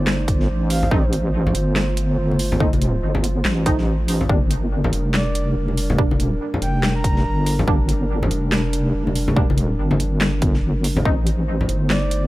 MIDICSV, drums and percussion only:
0, 0, Header, 1, 2, 480
1, 0, Start_track
1, 0, Key_signature, -2, "minor"
1, 0, Tempo, 422535
1, 1039, Time_signature, 4, 2, 24, 8
1, 13939, End_track
2, 0, Start_track
2, 0, Title_t, "Drums"
2, 79, Note_on_c, 9, 38, 117
2, 79, Note_on_c, 9, 39, 85
2, 192, Note_off_c, 9, 38, 0
2, 192, Note_off_c, 9, 39, 0
2, 318, Note_on_c, 9, 36, 98
2, 319, Note_on_c, 9, 42, 82
2, 431, Note_off_c, 9, 36, 0
2, 432, Note_off_c, 9, 42, 0
2, 463, Note_on_c, 9, 38, 35
2, 577, Note_off_c, 9, 38, 0
2, 798, Note_on_c, 9, 46, 98
2, 911, Note_off_c, 9, 46, 0
2, 939, Note_on_c, 9, 64, 87
2, 1038, Note_on_c, 9, 36, 114
2, 1052, Note_off_c, 9, 64, 0
2, 1152, Note_off_c, 9, 36, 0
2, 1280, Note_on_c, 9, 42, 80
2, 1394, Note_off_c, 9, 42, 0
2, 1666, Note_on_c, 9, 64, 96
2, 1758, Note_on_c, 9, 42, 82
2, 1779, Note_off_c, 9, 64, 0
2, 1872, Note_off_c, 9, 42, 0
2, 1999, Note_on_c, 9, 38, 113
2, 1999, Note_on_c, 9, 39, 88
2, 2112, Note_off_c, 9, 38, 0
2, 2112, Note_off_c, 9, 39, 0
2, 2239, Note_on_c, 9, 42, 85
2, 2353, Note_off_c, 9, 42, 0
2, 2630, Note_on_c, 9, 63, 57
2, 2718, Note_on_c, 9, 46, 100
2, 2743, Note_off_c, 9, 63, 0
2, 2832, Note_off_c, 9, 46, 0
2, 2863, Note_on_c, 9, 64, 92
2, 2946, Note_on_c, 9, 63, 61
2, 2958, Note_on_c, 9, 36, 115
2, 2976, Note_off_c, 9, 64, 0
2, 3060, Note_off_c, 9, 63, 0
2, 3072, Note_off_c, 9, 36, 0
2, 3102, Note_on_c, 9, 63, 80
2, 3103, Note_on_c, 9, 42, 37
2, 3199, Note_off_c, 9, 42, 0
2, 3199, Note_on_c, 9, 42, 82
2, 3216, Note_off_c, 9, 63, 0
2, 3312, Note_off_c, 9, 42, 0
2, 3575, Note_on_c, 9, 64, 93
2, 3678, Note_on_c, 9, 42, 83
2, 3689, Note_off_c, 9, 64, 0
2, 3792, Note_off_c, 9, 42, 0
2, 3919, Note_on_c, 9, 38, 115
2, 3919, Note_on_c, 9, 39, 95
2, 4032, Note_off_c, 9, 38, 0
2, 4032, Note_off_c, 9, 39, 0
2, 4158, Note_on_c, 9, 42, 86
2, 4159, Note_on_c, 9, 36, 102
2, 4160, Note_on_c, 9, 63, 61
2, 4271, Note_off_c, 9, 42, 0
2, 4273, Note_off_c, 9, 36, 0
2, 4274, Note_off_c, 9, 63, 0
2, 4303, Note_on_c, 9, 38, 36
2, 4416, Note_off_c, 9, 38, 0
2, 4638, Note_on_c, 9, 46, 99
2, 4752, Note_off_c, 9, 46, 0
2, 4780, Note_on_c, 9, 64, 88
2, 4879, Note_on_c, 9, 36, 121
2, 4894, Note_off_c, 9, 64, 0
2, 4992, Note_off_c, 9, 36, 0
2, 5119, Note_on_c, 9, 42, 82
2, 5233, Note_off_c, 9, 42, 0
2, 5502, Note_on_c, 9, 64, 104
2, 5598, Note_on_c, 9, 42, 85
2, 5615, Note_off_c, 9, 64, 0
2, 5712, Note_off_c, 9, 42, 0
2, 5838, Note_on_c, 9, 38, 122
2, 5838, Note_on_c, 9, 39, 92
2, 5952, Note_off_c, 9, 38, 0
2, 5952, Note_off_c, 9, 39, 0
2, 6079, Note_on_c, 9, 42, 85
2, 6193, Note_off_c, 9, 42, 0
2, 6455, Note_on_c, 9, 63, 59
2, 6560, Note_on_c, 9, 46, 94
2, 6569, Note_off_c, 9, 63, 0
2, 6673, Note_off_c, 9, 46, 0
2, 6700, Note_on_c, 9, 64, 104
2, 6799, Note_on_c, 9, 36, 126
2, 6813, Note_off_c, 9, 64, 0
2, 6913, Note_off_c, 9, 36, 0
2, 6943, Note_on_c, 9, 63, 92
2, 7041, Note_on_c, 9, 42, 81
2, 7057, Note_off_c, 9, 63, 0
2, 7154, Note_off_c, 9, 42, 0
2, 7428, Note_on_c, 9, 64, 96
2, 7521, Note_on_c, 9, 42, 82
2, 7542, Note_off_c, 9, 64, 0
2, 7634, Note_off_c, 9, 42, 0
2, 7762, Note_on_c, 9, 38, 126
2, 7762, Note_on_c, 9, 39, 97
2, 7875, Note_off_c, 9, 38, 0
2, 7875, Note_off_c, 9, 39, 0
2, 8000, Note_on_c, 9, 36, 105
2, 8001, Note_on_c, 9, 42, 84
2, 8113, Note_off_c, 9, 36, 0
2, 8115, Note_off_c, 9, 42, 0
2, 8145, Note_on_c, 9, 38, 38
2, 8258, Note_off_c, 9, 38, 0
2, 8480, Note_on_c, 9, 46, 91
2, 8594, Note_off_c, 9, 46, 0
2, 8624, Note_on_c, 9, 64, 99
2, 8720, Note_on_c, 9, 36, 127
2, 8738, Note_off_c, 9, 64, 0
2, 8833, Note_off_c, 9, 36, 0
2, 8960, Note_on_c, 9, 42, 78
2, 9074, Note_off_c, 9, 42, 0
2, 9345, Note_on_c, 9, 64, 98
2, 9440, Note_on_c, 9, 42, 81
2, 9459, Note_off_c, 9, 64, 0
2, 9553, Note_off_c, 9, 42, 0
2, 9680, Note_on_c, 9, 38, 127
2, 9680, Note_on_c, 9, 39, 97
2, 9793, Note_off_c, 9, 38, 0
2, 9793, Note_off_c, 9, 39, 0
2, 9919, Note_on_c, 9, 42, 80
2, 10033, Note_off_c, 9, 42, 0
2, 10304, Note_on_c, 9, 63, 71
2, 10400, Note_on_c, 9, 46, 93
2, 10418, Note_off_c, 9, 63, 0
2, 10513, Note_off_c, 9, 46, 0
2, 10540, Note_on_c, 9, 64, 95
2, 10639, Note_on_c, 9, 36, 124
2, 10654, Note_off_c, 9, 64, 0
2, 10753, Note_off_c, 9, 36, 0
2, 10791, Note_on_c, 9, 63, 86
2, 10879, Note_on_c, 9, 42, 74
2, 10905, Note_off_c, 9, 63, 0
2, 10993, Note_off_c, 9, 42, 0
2, 11255, Note_on_c, 9, 64, 93
2, 11263, Note_on_c, 9, 63, 71
2, 11359, Note_on_c, 9, 42, 78
2, 11369, Note_off_c, 9, 64, 0
2, 11376, Note_off_c, 9, 63, 0
2, 11473, Note_off_c, 9, 42, 0
2, 11597, Note_on_c, 9, 38, 127
2, 11597, Note_on_c, 9, 39, 90
2, 11711, Note_off_c, 9, 38, 0
2, 11711, Note_off_c, 9, 39, 0
2, 11836, Note_on_c, 9, 42, 79
2, 11838, Note_on_c, 9, 36, 107
2, 11949, Note_off_c, 9, 42, 0
2, 11951, Note_off_c, 9, 36, 0
2, 11982, Note_on_c, 9, 38, 39
2, 12095, Note_off_c, 9, 38, 0
2, 12317, Note_on_c, 9, 46, 95
2, 12430, Note_off_c, 9, 46, 0
2, 12457, Note_on_c, 9, 64, 94
2, 12558, Note_on_c, 9, 36, 118
2, 12571, Note_off_c, 9, 64, 0
2, 12672, Note_off_c, 9, 36, 0
2, 12798, Note_on_c, 9, 42, 74
2, 12912, Note_off_c, 9, 42, 0
2, 13185, Note_on_c, 9, 64, 90
2, 13279, Note_on_c, 9, 42, 79
2, 13299, Note_off_c, 9, 64, 0
2, 13393, Note_off_c, 9, 42, 0
2, 13518, Note_on_c, 9, 38, 123
2, 13518, Note_on_c, 9, 39, 86
2, 13632, Note_off_c, 9, 38, 0
2, 13632, Note_off_c, 9, 39, 0
2, 13760, Note_on_c, 9, 42, 80
2, 13874, Note_off_c, 9, 42, 0
2, 13939, End_track
0, 0, End_of_file